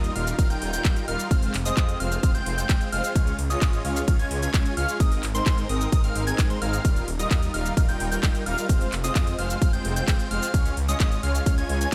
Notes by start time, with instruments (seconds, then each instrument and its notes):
Already playing: supersaw synth G3 D#4 F4 A#4 D#5, digital synth lead D#6
0.04 closed hi-hat, cabasa
0.15 detuned saw bass D#1, supersaw synth G3 D#4 F4 A#4 F5, digital synth lead F6, open hi-hat
0.27 closed hi-hat, cabasa
0.39 detuned saw bass D#1, supersaw synth G3 D#4 F4 A#4 F5, digital synth lead F6, kick, closed hi-hat, ride, cabasa
0.50 supersaw synth G3 D#4 F4 A#4 G5, digital synth lead G6, closed hi-hat, cabasa
0.62 detuned saw bass D#1, open hi-hat
0.73 supersaw synth G3 D#4 F4 A#4 G5, digital synth lead G6, closed hi-hat, cabasa
0.85 detuned saw bass D#1, supersaw synth G3 D#4 F4 A#4 G5, kick, clap, closed hi-hat, ride, cabasa
0.96 closed hi-hat, cabasa
1.08 detuned saw bass D#1, supersaw synth G3 D#4 F4 A#4 F5, digital synth lead F6, open hi-hat
1.19 closed hi-hat, cabasa
1.31 detuned saw bass F1, supersaw synth G#3 C4 F4 C5 F5, digital synth lead F6, kick, closed hi-hat, ride, cabasa
1.43 open hi-hat, cabasa
1.54 detuned saw bass F1, clap, open hi-hat
1.65 supersaw synth G#3 C4 F4 C5 D#5, digital synth lead D#6, closed hi-hat, cabasa
1.77 detuned saw bass F2, supersaw synth G#3 C4 F4 C5 D#5, kick, clap, closed hi-hat, ride, cabasa
1.89 closed hi-hat, cabasa
2.00 detuned saw bass F1, supersaw synth G#3 C4 F4 C5 F5, digital synth lead F6, open hi-hat
2.12 closed hi-hat, cabasa
2.23 detuned saw bass F1, supersaw synth G#3 C4 F4 C5 F5, digital synth lead F6, kick, closed hi-hat, ride, cabasa
2.35 supersaw synth G#3 C4 F4 C5 G5, digital synth lead G6, closed hi-hat, cabasa
2.46 detuned saw bass F1, open hi-hat
2.58 supersaw synth G#3 C4 F4 C5 G5, digital synth lead G6, closed hi-hat, cabasa
2.69 detuned saw bass F1, supersaw synth G#3 C4 F4 C5 G5, digital synth lead G6, kick, clap, closed hi-hat, ride, cabasa
2.81 closed hi-hat, cabasa
2.92 detuned saw bass F1, supersaw synth G#3 C4 F4 C5 F5, digital synth lead F6, open hi-hat
3.04 closed hi-hat, cabasa
3.15 detuned saw bass C#2, supersaw synth G#3 C#4 F4 C#5 F5, digital synth lead F6, kick, closed hi-hat, ride, cabasa
3.27 closed hi-hat, cabasa
3.39 detuned saw bass C#2, open hi-hat
3.50 supersaw synth G#3 C#4 F4 C#5 D#5, digital synth lead D#6, closed hi-hat, cabasa
3.62 detuned saw bass G#1, supersaw synth G#3 C#4 F4 C#5 D#5, digital synth lead D#6, kick, clap, closed hi-hat, ride, cabasa
3.73 closed hi-hat, cabasa
3.85 detuned saw bass C#2, supersaw synth G#3 C#4 F4 C#5 F5, digital synth lead F6, open hi-hat
3.96 closed hi-hat, cabasa
4.08 detuned saw bass C#2, supersaw synth G#3 C#4 F4 C#5 F5, digital synth lead F6, kick, closed hi-hat, ride, cabasa
4.19 supersaw synth G#3 C#4 F4 C#5 G#5, digital synth lead G#6, closed hi-hat, cabasa
4.31 detuned saw bass C#2, open hi-hat
4.42 supersaw synth G#3 C#4 F4 C#5 G#5, digital synth lead G#6, closed hi-hat, cabasa
4.54 detuned saw bass C#2, supersaw synth G#3 C#4 F4 C#5 G#5, kick, clap, closed hi-hat, ride, cabasa
4.66 closed hi-hat, cabasa
4.77 detuned saw bass C#2, supersaw synth G#3 C#4 F4 C#5 F5, digital synth lead F6, open hi-hat
4.89 closed hi-hat, cabasa
5.00 detuned saw bass G#1, supersaw synth G#3 C4 D#4 A#4 D#5, digital synth lead D#6, kick, closed hi-hat, ride, cabasa
5.12 open hi-hat, cabasa
5.23 detuned saw bass G#1, clap, open hi-hat
5.35 supersaw synth G#3 C4 D#4 A#4 C5, digital synth lead C6, closed hi-hat, cabasa
5.46 detuned saw bass G#2, supersaw synth G#3 C4 D#4 A#4 C5, digital synth lead C6, kick, clap, closed hi-hat, ride, cabasa
5.58 closed hi-hat, cabasa
5.69 detuned saw bass G#1, supersaw synth G#3 C4 D#4 A#4 D#5, digital synth lead D#6, open hi-hat
5.81 closed hi-hat, cabasa
5.92 detuned saw bass G#1, supersaw synth G#3 C4 D#4 A#4 D#5, digital synth lead D#6, kick, closed hi-hat, ride, cabasa
6.04 supersaw synth G#3 C4 D#4 A#4 F5, digital synth lead F6, closed hi-hat, cabasa
6.16 detuned saw bass G#1, open hi-hat
6.27 supersaw synth G#3 C4 D#4 A#4 G#5, digital synth lead G#6, closed hi-hat, cabasa
6.39 detuned saw bass G#1, kick, clap, closed hi-hat, ride, cabasa
6.50 supersaw synth G#3 C4 D#4 A#4 C5, digital synth lead C6, closed hi-hat, cabasa
6.62 detuned saw bass G#1, supersaw synth G#3 C4 D#4 A#4 F5, digital synth lead F6, open hi-hat
6.73 closed hi-hat, cabasa
6.85 detuned saw bass D#1, supersaw synth G3 D#4 F4 A#4 F5, digital synth lead F6, kick, closed hi-hat, ride, cabasa
6.96 closed hi-hat, cabasa
7.08 detuned saw bass D#1, open hi-hat
7.19 supersaw synth G3 D#4 F4 A#4 D#5, digital synth lead D#6, closed hi-hat, cabasa
7.31 detuned saw bass D#2, supersaw synth G3 D#4 F4 A#4 D#5, kick, clap, closed hi-hat, ride, cabasa
7.43 closed hi-hat, cabasa
7.54 detuned saw bass D#1, supersaw synth G3 D#4 F4 A#4 F5, digital synth lead F6, open hi-hat
7.66 closed hi-hat, cabasa
7.77 detuned saw bass D#1, supersaw synth G3 D#4 F4 A#4 F5, digital synth lead F6, kick, closed hi-hat, ride, cabasa
7.88 supersaw synth G3 D#4 F4 A#4 G5, digital synth lead G6, closed hi-hat, cabasa
8.00 detuned saw bass D#1, open hi-hat
8.12 supersaw synth G3 D#4 F4 A#4 G5, digital synth lead G6, closed hi-hat, cabasa
8.23 detuned saw bass D#1, supersaw synth G3 D#4 F4 A#4 G5, digital synth lead G6, kick, clap, closed hi-hat, ride, cabasa
8.35 closed hi-hat, cabasa
8.46 detuned saw bass D#1, supersaw synth G3 D#4 F4 A#4 F5, digital synth lead F6, open hi-hat
8.58 closed hi-hat, cabasa
8.69 detuned saw bass F1, supersaw synth G#3 C4 F4 C5 F5, digital synth lead F6, kick, closed hi-hat, ride, cabasa
8.81 open hi-hat, cabasa
8.92 detuned saw bass F1, clap, open hi-hat
9.04 supersaw synth G#3 C4 F4 C5 D#5, digital synth lead D#6, closed hi-hat, cabasa
9.15 detuned saw bass F2, supersaw synth G#3 C4 F4 C5 D#5, kick, clap, closed hi-hat, ride, cabasa
9.27 closed hi-hat, cabasa
9.38 detuned saw bass F1, supersaw synth G#3 C4 F4 C5 F5, digital synth lead F6, open hi-hat
9.50 closed hi-hat, cabasa
9.62 detuned saw bass F1, supersaw synth G#3 C4 F4 C5 F5, digital synth lead F6, kick, closed hi-hat, ride, cabasa
9.73 supersaw synth G#3 C4 F4 C5 G5, digital synth lead G6, closed hi-hat, cabasa
9.85 detuned saw bass F1, open hi-hat
9.96 supersaw synth G#3 C4 F4 C5 G5, digital synth lead G6, closed hi-hat, cabasa
10.08 detuned saw bass F1, supersaw synth G#3 C4 F4 C5 G5, digital synth lead G6, kick, clap, closed hi-hat, ride, cabasa
10.19 closed hi-hat, cabasa
10.31 detuned saw bass F1, supersaw synth G#3 C4 F4 C5 F5, digital synth lead F6, open hi-hat
10.43 closed hi-hat, cabasa
10.54 detuned saw bass C#2, supersaw synth G#3 C#4 F4 C#5 F5, digital synth lead F6, kick, closed hi-hat, ride, cabasa
10.66 closed hi-hat, cabasa
10.77 detuned saw bass C#2, open hi-hat
10.89 supersaw synth G#3 C#4 F4 C#5 D#5, digital synth lead D#6, closed hi-hat, cabasa
11.00 detuned saw bass G#1, supersaw synth G#3 C#4 F4 C#5 D#5, kick, clap, closed hi-hat, ride, cabasa
11.12 closed hi-hat, cabasa
11.23 detuned saw bass C#2, supersaw synth G#3 C#4 F4 C#5 F5, digital synth lead F6, open hi-hat
11.35 closed hi-hat, cabasa
11.46 detuned saw bass C#2, supersaw synth G#3 C#4 F4 C#5 F5, digital synth lead F6, kick, closed hi-hat, ride, cabasa
11.58 supersaw synth G#3 C#4 F4 C#5 G#5, digital synth lead G#6, closed hi-hat, cabasa
11.69 detuned saw bass C#2, open hi-hat
11.81 supersaw synth G#3 C#4 F4 C#5 G#5, digital synth lead G#6, closed hi-hat, cabasa